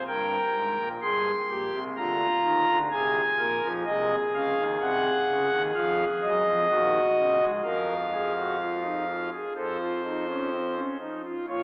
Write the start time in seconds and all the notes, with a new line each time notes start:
0.08 G1 G2 A#4 G5
0.54 G#1 G#2
0.78 A#1 A#2
1.02 G1 G2 G#4 C6
1.49 A#1 A#2 G4
1.73 C2 C3
1.97 D2 D3 F4 A#5
2.44 D#2 D#3
2.68 D2 D3
2.92 C2 C3 G#4 G#5
3.39 A#1 A#2 A#4
3.63 F2 F3
3.86 C2 C3 G#4 D#5
4.34 C#2 C#3 F5
4.57 D#2 D#3
4.81 C2 C3 F#5
5.28 C#2 C#3
5.51 D#2 D#3
5.75 F2 F3 F5
6.23 F#2 F#3 D#5
6.46 F2 F3
6.70 D#2 D#3 F#4
7.17 C#2 C#3
7.41 G#2 G#3
7.64 F2 F3 A#4 F5
8.13 G#4
8.36 F#4
8.60 F4
8.83 D#4
9.07 F4
9.33 G#4
9.55 F2 F3 A4 C5
9.80 F4
10.05 D#4
10.29 C#4
10.52 C4
10.75 C#4
11.00 D#4
11.24 F4
11.48 A#1 A#2 F4 C#5